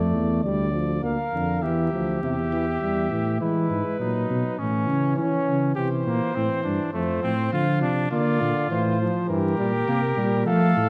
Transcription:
Already playing: tuba F2, trombone A3, cornet D5
0.14 tuba E2
0.43 tuba D2, trombone G3, cornet D5
0.74 trombone F3
1.02 tuba D2, trombone A#3, trumpet A#4, cornet F5
1.33 tuba F2, trombone D3
1.62 tuba E2, trombone E3, trumpet G4, cornet E5
1.92 tuba D2, trombone F3
2.22 tuba E2, trombone C3, cornet E5
2.52 trombone E3
2.81 tuba E2, trombone G3
3.10 tuba A2, trombone E3
3.40 tuba E3, trombone G#3, trumpet E4, cornet B4
3.70 tuba G#2
3.99 tuba A#2, trombone F#3, trumpet D#4
4.30 tuba B2
4.58 tuba A2, trombone E3, trumpet C#4, cornet C#5
4.88 tuba C#3
5.16 tuba E3, trumpet C#4, cornet C#5
5.47 tuba C#3
5.75 tuba C3, trombone E3, trumpet G4, cornet C5
6.06 tuba A#2, trumpet A#3
6.35 tuba A2, trombone E3, trumpet C4
6.63 tuba G2, trumpet D4
6.93 tuba F2, trombone F3, trumpet A3, cornet C5
7.23 tuba A2, trumpet C4
7.53 tuba D3, trombone F3, trumpet F4
7.81 tuba C3, trumpet D4
8.11 tuba D3, trombone A#3, trumpet F4, cornet D5
8.41 tuba A#2, trombone D3
8.70 tuba A2, trombone E3, cornet C5
9.01 trombone F3
9.27 tuba G2, trombone E3, trumpet G4, cornet A#4
9.58 tuba A#2, trombone G3
9.88 tuba C3, trombone A#3
10.16 tuba A#2, trombone G3
10.46 tuba F3, trombone A3, trumpet A4, cornet F5
10.76 tuba A2

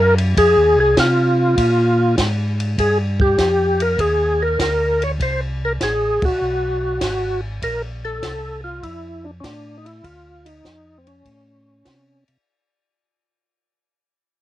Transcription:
Already playing: tonewheel organ F#2 A#4
0.18 ride
0.37 tonewheel organ F2 G#4, kick, ride
0.57 tonewheel organ D#2
0.77 tonewheel organ C2 G#4
0.97 tonewheel organ C3 F4, kick, snare, hi-hat pedal, ride
1.57 tonewheel organ A#2, kick, ride
2.18 tonewheel organ G#2, kick, snare, hi-hat pedal, ride
2.60 ride
2.78 tonewheel organ G2 G#4, kick, ride
3.20 tonewheel organ G4, kick
3.38 tonewheel organ F2, kick, snare, hi-hat pedal, ride
3.80 tonewheel organ A#4, ride
3.99 tonewheel organ D#2 G#4, kick, ride
4.42 tonewheel organ A#4
4.59 tonewheel organ D2 A#4, kick, snare, hi-hat pedal, ride
5.02 tonewheel organ C#5, ride
5.20 tonewheel organ C2 C5, kick, ride
5.65 tonewheel organ A#4
5.80 tonewheel organ A1 G#4, kick, snare, hi-hat pedal, ride
6.22 tonewheel organ A1 F#4, kick, ride
6.41 tonewheel organ B1
7.01 tonewheel organ G#1, kick, snare, hi-hat pedal, ride
7.62 tonewheel organ A#1 A#4, kick, ride
8.05 tonewheel organ A4
8.22 tonewheel organ C2, kick, snare, hi-hat pedal, ride
8.64 tonewheel organ F4
8.83 tonewheel organ F2 E4, kick, ride
9.24 tonewheel organ D4
9.40 tonewheel organ A2 C#4, kick, snare, hi-hat pedal, ride
9.44 tonewheel organ D4
9.78 tonewheel organ D#4
9.85 tonewheel organ E4, ride
10.04 tonewheel organ D2 F4, kick, ride
10.45 tonewheel organ D#4, ride
10.65 tonewheel organ F2, kick, snare, hi-hat pedal
10.98 tonewheel organ C4
11.07 tonewheel organ C#4, ride
11.25 tonewheel organ A2, kick, ride
11.85 tonewheel organ C3, kick, snare, hi-hat pedal, ride
12.28 tonewheel organ C3, ride

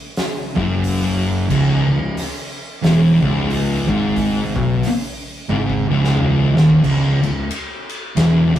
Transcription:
0.17 snare, open hi-hat
0.56 picked electric bass F#1, distorted electric guitar F#2, kick
0.84 open hi-hat
1.50 picked electric bass C#1, distorted electric guitar C#2, kick, crash
1.89 picked electric bass C#1, distorted electric guitar C#2
2.17 snare, open hi-hat
2.83 picked electric bass E1, distorted electric guitar E2, snare, open hi-hat
3.22 picked electric bass C#1, distorted electric guitar C#2, kick
3.50 open hi-hat
3.88 picked electric bass G#1, distorted electric guitar G#2, kick
4.16 kick, open hi-hat
4.56 picked electric bass B1, distorted electric guitar B2, kick
4.83 snare, open hi-hat
5.49 picked electric bass G#1, distorted electric guitar G#2, high tom
5.70 kick
5.89 picked electric bass C#1, distorted electric guitar C#2
6.04 snare
6.17 mid tom
6.55 picked electric bass D#1, distorted electric guitar D#2, snare
6.70 kick
6.83 picked electric bass C#1, distorted electric guitar C#2, kick, crash
7.22 picked electric bass C#1, distorted electric guitar C#2, ride
7.51 ride
7.89 ride
8.16 picked electric bass E1, distorted electric guitar E2, snare, ride
8.56 picked electric bass C#1, distorted electric guitar C#2, kick, ride

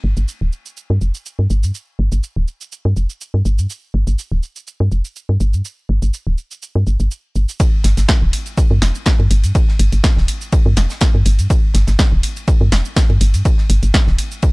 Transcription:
0.04 fm bass G1
0.17 fm bass G1, shaker
0.28 shaker
0.41 fm bass D1
0.53 shaker
0.66 shaker
0.77 shaker
0.90 fm bass G2
1.01 fm bass F1, shaker
1.14 shaker
1.26 shaker
1.39 fm bass G2
1.50 fm bass G1, shaker
1.63 fm bass G2, shaker
1.75 shaker
1.99 fm bass G1
2.12 fm bass G1, shaker
2.23 shaker
2.36 fm bass D1
2.48 shaker
2.61 shaker
2.72 shaker
2.85 fm bass G2
2.96 fm bass F1, shaker
3.10 shaker
3.21 shaker
3.34 fm bass G2
3.45 fm bass G1, shaker
3.58 fm bass G2, shaker
3.70 shaker
3.94 fm bass G1
4.07 fm bass G1, shaker
4.18 shaker
4.32 fm bass D1
4.43 shaker
4.56 shaker
4.67 shaker
4.80 fm bass G2
4.92 fm bass F1, shaker
5.05 shaker
5.16 shaker
5.29 fm bass G2
5.40 fm bass G1, shaker
5.53 fm bass G2, shaker
5.65 shaker
5.89 fm bass G1
6.02 fm bass G1, shaker
6.14 shaker
6.27 fm bass D1
6.38 shaker
6.51 shaker
6.62 shaker
6.75 fm bass G2
6.87 fm bass G1, shaker
7.00 fm bass G1, shaker
7.11 shaker
7.36 fm bass G1, shaker
7.49 shaker
7.60 kick, ride, shaker
7.84 fm bass G1, snare, open hi-hat, ride, shaker
7.97 fm bass G1, snare, open hi-hat, shaker
8.08 kick, snare, ride, shaker
8.22 fm bass D1
8.33 open hi-hat, ride, shaker
8.46 ride, shaker
8.57 kick, ride, shaker
8.71 fm bass G2
8.82 fm bass F1, snare, open hi-hat, ride, shaker
8.95 shaker
9.06 kick, snare, ride, shaker
9.19 fm bass G2, ride
9.31 fm bass G1, open hi-hat, ride, shaker
9.43 fm bass G2, open hi-hat, ride, shaker
9.55 kick, ride, shaker
9.68 snare
9.79 fm bass G1, open hi-hat, ride, shaker
9.92 fm bass G1, open hi-hat, shaker
10.04 kick, snare, ride, shaker
10.17 fm bass D1, snare
10.28 open hi-hat, ride, shaker
10.41 shaker
10.52 kick, ride, shaker
10.66 fm bass G2
10.77 fm bass F1, snare, open hi-hat, ride, shaker
10.90 snare, shaker
11.01 kick, snare, ride, shaker
11.14 fm bass G2
11.25 fm bass G1, open hi-hat, ride, shaker
11.39 fm bass G2, open hi-hat, shaker
11.50 kick, ride, shaker
11.74 fm bass G1, snare, open hi-hat, ride, shaker
11.87 fm bass G1, snare, open hi-hat, shaker
11.99 kick, snare, ride, shaker
12.12 fm bass D1
12.23 open hi-hat, ride, shaker
12.36 ride, shaker
12.48 kick, ride, shaker
12.61 fm bass G2
12.72 fm bass F1, snare, open hi-hat, ride, shaker
12.85 shaker
12.97 kick, snare, ride, shaker
13.10 fm bass G2, ride
13.21 fm bass G1, open hi-hat, ride, shaker
13.34 fm bass G2, open hi-hat, ride, shaker
13.45 kick, ride, shaker
13.58 snare
13.70 fm bass G1, open hi-hat, ride, shaker
13.83 fm bass G1, open hi-hat, shaker
13.94 kick, snare, ride, shaker
14.07 fm bass D1, snare
14.19 open hi-hat, ride, shaker
14.32 shaker
14.42 kick, ride, shaker

